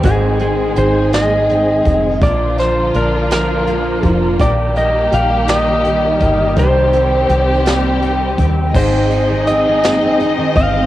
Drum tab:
CC |------|------|------|------|
HH |xxxxxx|xxxxxx|xxxxxx|xxxxxx|
SD |---o--|-o-o--|---o--|---o--|
BD |o----o|o----o|o----o|o----o|

CC |x-----|
HH |-xxxxx|
SD |---o--|
BD |o----o|